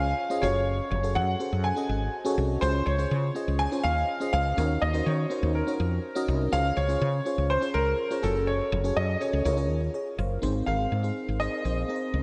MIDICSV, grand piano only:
0, 0, Header, 1, 2, 480
1, 0, Start_track
1, 0, Key_signature, -5, "major"
1, 0, Tempo, 487805
1, 663, Time_signature, 4, 2, 24, 8
1, 12032, End_track
2, 0, Start_track
2, 0, Title_t, "Grand piano"
2, 0, Program_c, 0, 0
2, 0, Note_on_c, 0, 77, 109
2, 410, Note_on_c, 0, 73, 98
2, 434, Note_off_c, 0, 77, 0
2, 876, Note_off_c, 0, 73, 0
2, 891, Note_on_c, 0, 73, 79
2, 1134, Note_on_c, 0, 78, 99
2, 1144, Note_off_c, 0, 73, 0
2, 1585, Note_off_c, 0, 78, 0
2, 1613, Note_on_c, 0, 80, 96
2, 2299, Note_off_c, 0, 80, 0
2, 2570, Note_on_c, 0, 72, 96
2, 2813, Note_on_c, 0, 73, 92
2, 2824, Note_off_c, 0, 72, 0
2, 3532, Note_on_c, 0, 80, 105
2, 3560, Note_off_c, 0, 73, 0
2, 3761, Note_off_c, 0, 80, 0
2, 3774, Note_on_c, 0, 77, 113
2, 4244, Note_off_c, 0, 77, 0
2, 4259, Note_on_c, 0, 77, 113
2, 4739, Note_on_c, 0, 75, 86
2, 4756, Note_off_c, 0, 77, 0
2, 4964, Note_off_c, 0, 75, 0
2, 4981, Note_on_c, 0, 73, 86
2, 5461, Note_on_c, 0, 70, 81
2, 5476, Note_off_c, 0, 73, 0
2, 6143, Note_off_c, 0, 70, 0
2, 6422, Note_on_c, 0, 77, 111
2, 6659, Note_on_c, 0, 73, 102
2, 6670, Note_off_c, 0, 77, 0
2, 7380, Note_on_c, 0, 72, 99
2, 7403, Note_off_c, 0, 73, 0
2, 7617, Note_on_c, 0, 70, 109
2, 7629, Note_off_c, 0, 72, 0
2, 8099, Note_on_c, 0, 69, 89
2, 8115, Note_off_c, 0, 70, 0
2, 8337, Note_on_c, 0, 73, 95
2, 8348, Note_off_c, 0, 69, 0
2, 8822, Note_on_c, 0, 75, 88
2, 8835, Note_off_c, 0, 73, 0
2, 9065, Note_on_c, 0, 73, 83
2, 9070, Note_off_c, 0, 75, 0
2, 9511, Note_off_c, 0, 73, 0
2, 10494, Note_on_c, 0, 77, 90
2, 11215, Note_on_c, 0, 75, 94
2, 11240, Note_off_c, 0, 77, 0
2, 12032, Note_off_c, 0, 75, 0
2, 12032, End_track
0, 0, End_of_file